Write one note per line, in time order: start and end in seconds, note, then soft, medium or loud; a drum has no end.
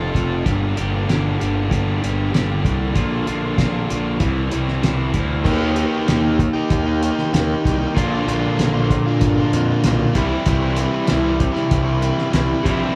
0.00 0.11 F1 medium
0.00 0.13 F3 medium
0.00 0.13 C4 medium
0.00 0.13 F4 medium
0.00 0.14 A4 medium
0.14 0.42 F1 medium
0.14 0.44 F3 medium
0.14 0.44 C4 medium
0.14 0.44 F4 medium
0.14 0.44 A4 medium
0.14 kick medium
0.14 closed hi-hat medium
0.44 0.73 G1 medium
0.44 0.75 G2 medium
0.44 0.75 D3 medium
0.44 0.75 G3 medium
0.44 0.76 A#3 medium
0.44 0.76 D4 medium
0.44 0.76 G4 medium
0.44 kick medium
0.44 closed hi-hat medium
0.76 1.05 G1 medium
0.76 1.06 G2 medium
0.76 1.07 D3 medium
0.76 1.06 G3 medium
0.76 1.07 A#3 medium
0.76 1.07 D4 medium
0.76 1.08 G4 medium
0.76 closed hi-hat medium
1.07 1.36 G1 medium
1.07 1.37 G2 medium
1.07 1.37 D3 medium
1.07 1.38 G3 medium
1.07 1.38 A#3 medium
1.07 1.38 D4 medium
1.07 1.39 G4 medium
1.07 snare medium
1.07 closed hi-hat medium
1.38 1.68 G1 medium
1.38 1.68 G2 medium
1.38 1.68 D3 medium
1.38 1.68 G3 medium
1.38 1.68 A#3 medium
1.38 1.69 D4 medium
1.38 1.69 G4 medium
1.38 closed hi-hat medium
1.69 1.99 G1 medium
1.69 1.99 G2 medium
1.69 1.99 D3 medium
1.69 1.99 G3 medium
1.69 1.99 A#3 medium
1.69 2.00 D4 medium
1.69 2.01 G4 loud
1.69 kick medium
1.69 closed hi-hat medium
2.00 2.30 G1 medium
2.00 2.31 G2 medium
2.00 2.31 D3 medium
2.00 2.31 G3 medium
2.00 2.32 A#3 medium
2.00 2.32 D4 medium
2.00 2.33 G4 medium
2.00 closed hi-hat medium
2.32 2.61 G1 medium
2.32 2.60 G2 medium
2.32 2.61 D3 medium
2.32 2.62 G3 medium
2.32 2.62 A#3 medium
2.32 2.62 D4 medium
2.32 2.62 G4 medium
2.32 snare loud
2.32 closed hi-hat medium
2.61 2.92 C2 medium
2.61 2.93 G2 medium
2.61 2.93 D3 medium
2.61 2.93 G3 medium
2.61 2.93 A#3 medium
2.61 2.94 D4 medium
2.61 2.94 G4 medium
2.61 kick medium
2.66 closed hi-hat medium
2.93 3.24 A#1 medium
2.93 3.25 A#2 medium
2.93 3.25 D3 medium
2.93 3.26 A#3 medium
2.93 3.26 D4 medium
2.93 3.26 F4 medium
2.93 kick loud
2.93 closed hi-hat medium
3.26 3.55 A#1 medium
3.26 3.56 A#2 medium
3.26 3.56 D3 medium
3.26 3.57 A#3 medium
3.26 3.57 D4 medium
3.26 3.57 F4 medium
3.26 closed hi-hat medium
3.57 3.86 A#1 medium
3.57 3.87 A#2 medium
3.57 3.88 D3 medium
3.57 3.88 A#3 medium
3.57 3.88 D4 medium
3.57 3.89 F4 medium
3.57 kick medium
3.57 snare loud
3.57 closed hi-hat medium
3.89 4.18 A#1 medium
3.89 4.19 A#2 medium
3.89 4.19 D3 medium
3.89 4.19 A#3 medium
3.89 4.19 D4 medium
3.89 4.20 F4 medium
3.89 closed hi-hat medium
4.20 4.48 C2 medium
4.20 4.49 C3 medium
4.20 4.49 E3 medium
4.20 4.49 G3 medium
4.20 4.50 C4 medium
4.20 4.51 E4 medium
4.20 kick medium
4.20 closed hi-hat medium
4.50 4.80 C2 medium
4.50 4.80 C3 medium
4.50 4.81 E3 medium
4.50 4.81 G3 medium
4.50 4.82 C4 medium
4.50 4.82 E4 medium
4.50 closed hi-hat medium
4.68 snare soft
4.82 5.11 C2 medium
4.82 5.11 C3 medium
4.82 5.12 E3 medium
4.82 5.12 G3 medium
4.82 5.13 C4 medium
4.82 5.13 E4 medium
4.82 snare loud
4.82 closed hi-hat medium
5.12 5.42 D2 medium
5.12 5.43 C3 medium
5.12 5.43 E3 medium
5.12 5.44 G3 medium
5.12 5.44 C4 medium
5.12 5.44 E4 medium
5.12 kick medium
5.12 closed hi-hat medium
5.43 5.84 D#2 medium
5.43 7.93 D#3 medium
5.43 5.74 D#3 medium
5.43 7.94 A#3 medium
5.43 5.61 A#3 medium
5.43 7.94 D#4 medium
5.43 5.59 D#4 medium
5.43 7.95 G4 medium
5.43 kick loud
5.43 crash medium
5.47 5.57 G4 medium
5.58 5.77 A#3 medium
5.58 5.77 D#4 medium
5.58 5.78 G4 medium
5.76 6.05 D#3 medium
5.76 6.07 A#3 medium
5.76 6.07 D#4 medium
5.76 6.08 G4 medium
5.76 closed hi-hat medium
6.06 6.47 D#2 medium
6.06 6.38 D#3 medium
6.06 6.25 A#3 medium
6.06 6.23 D#4 medium
6.06 6.21 G4 medium
6.06 snare medium
6.06 closed hi-hat medium
6.22 6.38 D#4 medium
6.22 6.39 G4 medium
6.26 6.38 A#3 medium
6.39 muted overdriven electric guitar stroke soft
6.39 kick medium
6.39 closed hi-hat medium
6.53 6.86 A#3 soft
6.53 6.85 D#4 medium
6.53 6.83 G4 medium
6.70 7.09 D#2 medium
6.70 kick medium
6.70 closed hi-hat medium
6.84 7.01 A#3 soft
6.84 7.02 D#4 medium
6.84 7.03 G4 medium
7.02 7.30 D#3 medium
7.02 7.32 A#3 medium
7.02 7.33 D#4 medium
7.02 7.34 G4 medium
7.02 closed hi-hat medium
7.19 snare soft
7.32 7.53 D#2 medium
7.32 7.62 D#3 medium
7.32 7.63 A#3 medium
7.32 7.64 D#4 loud
7.32 7.65 G4 loud
7.32 snare loud
7.32 closed hi-hat medium
7.63 7.85 C2 medium
7.63 7.94 D#3 medium
7.63 7.80 A#3 medium
7.63 7.78 D#4 medium
7.63 7.77 G4 medium
7.63 kick medium
7.63 closed hi-hat medium
7.67 snare soft
7.78 7.95 A#3 medium
7.78 7.94 D#4 medium
7.78 7.93 G4 medium
7.94 8.16 A#1 medium
7.94 8.42 A#2 medium
7.94 10.13 A#2 medium
7.94 8.24 D3 medium
7.94 10.13 D3 medium
7.94 8.13 A#3 medium
7.94 10.14 A#3 medium
7.94 8.12 D4 medium
7.94 10.14 D4 medium
7.94 8.10 F4 medium
7.94 10.14 F4 medium
7.94 kick loud
7.94 closed hi-hat medium
8.11 8.25 A#3 soft
8.11 8.27 D4 medium
8.11 8.27 F4 medium
8.25 8.46 A#1 medium
8.25 8.58 D3 medium
8.25 8.58 A#3 medium
8.25 8.59 D4 medium
8.25 8.60 F4 medium
8.25 closed hi-hat medium
8.57 8.97 A#1 medium
8.57 9.05 A#2 medium
8.57 8.90 D3 medium
8.57 8.76 A#3 medium
8.57 8.74 D4 medium
8.57 8.72 F4 medium
8.57 snare loud
8.57 closed hi-hat medium
8.74 8.90 A#3 medium
8.74 8.91 D4 medium
8.74 8.90 F4 medium
8.90 muted overdriven electric guitar stroke soft
8.90 kick medium
8.90 closed hi-hat medium
9.06 9.40 A#3 soft
9.06 9.38 D4 medium
9.06 9.36 F4 medium
9.21 9.41 G1 medium
9.21 kick loud
9.21 closed hi-hat medium
9.38 9.53 A#3 medium
9.38 9.54 D4 medium
9.38 9.55 F4 medium
9.53 9.72 F2 medium
9.53 9.84 D3 medium
9.53 9.84 A#3 medium
9.53 9.84 D4 medium
9.53 9.86 F4 medium
9.53 closed hi-hat medium
9.84 10.04 B1 medium
9.84 10.14 A#2 loud
9.84 10.14 D3 medium
9.84 10.14 A#3 loud
9.84 10.14 D4 medium
9.84 10.15 F4 loud
9.84 snare loud
9.84 closed hi-hat medium
10.14 10.34 C2 medium
10.14 10.45 C3 medium
10.14 12.62 C3 medium
10.14 12.63 E3 medium
10.14 10.46 E3 medium
10.14 12.64 G3 medium
10.14 10.33 G3 medium
10.14 12.65 C4 medium
10.14 10.32 C4 medium
10.14 12.64 E4 medium
10.14 10.30 E4 medium
10.14 kick medium
10.14 snare soft
10.14 closed hi-hat medium
10.30 10.47 G3 medium
10.30 10.47 C4 medium
10.30 10.49 E4 medium
10.45 10.85 C2 medium
10.45 11.06 C3 medium
10.45 10.76 E3 medium
10.45 10.64 G3 medium
10.45 10.63 C4 medium
10.45 10.61 E4 medium
10.45 kick loud
10.45 closed hi-hat medium
10.61 10.77 G3 medium
10.61 10.78 C4 medium
10.61 10.80 E4 medium
10.76 11.07 E3 medium
10.76 11.08 G3 medium
10.76 11.09 C4 medium
10.76 11.10 E4 medium
10.76 closed hi-hat medium
11.07 12.30 C3 medium
11.07 11.39 E3 medium
11.07 11.26 G3 medium
11.07 11.24 C4 medium
11.07 11.23 E4 loud
11.07 snare loud
11.07 closed hi-hat medium
11.12 11.49 C2 medium
11.23 11.39 G3 medium
11.23 11.40 C4 medium
11.23 11.39 E4 medium
11.39 muted overdriven electric guitar stroke soft
11.39 kick medium
11.39 closed hi-hat medium
11.52 11.85 G3 soft
11.52 11.85 C4 medium
11.52 11.82 E4 medium
11.52 snare soft
11.71 12.10 C2 medium
11.71 kick loud
11.71 closed hi-hat medium
11.83 12.00 G3 medium
11.83 12.02 C4 medium
11.83 12.02 E4 medium
12.00 12.30 E3 medium
12.00 12.30 G3 medium
12.00 12.32 C4 medium
12.00 12.32 E4 medium
12.00 closed hi-hat medium
12.18 snare soft
12.30 12.53 C2 medium
12.30 12.94 C3 medium
12.30 12.62 E3 loud
12.30 12.64 G3 loud
12.30 12.65 C4 medium
12.30 12.65 E4 loud
12.30 snare loud
12.30 closed hi-hat medium
12.63 12.84 A#1 medium
12.63 12.95 C3 medium
12.63 12.95 E3 medium
12.63 12.82 G3 medium
12.63 12.95 G3 medium
12.63 12.80 C4 medium
12.63 12.95 C4 medium
12.63 12.95 E4 loud
12.63 12.79 E4 medium
12.63 kick medium
12.63 closed hi-hat medium
12.80 12.95 G3 medium
12.80 12.95 C4 medium
12.80 12.95 E4 medium